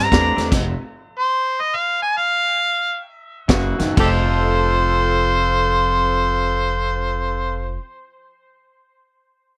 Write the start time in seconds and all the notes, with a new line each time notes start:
Already playing: C3 G3
0.00 A#5
0.11 E2 C3 G3 A3 C4 D4, kick, snare, closed hi-hat
0.37 E2 C3 A3, snare, closed hi-hat
0.51 F1 F2 C3, kick, snare, closed hi-hat, crash
1.19 C5
1.61 D#5
1.76 F5
2.02 G#5
2.17 F5
3.48 F#1 F#2 C#3 A#3 E4 F#4, kick, snare, closed hi-hat
3.79 F#1 F#2 D#3, snare, closed hi-hat
3.96 F1 F3 C4 F4 A4, kick, crash
4.00 G4 A4 C5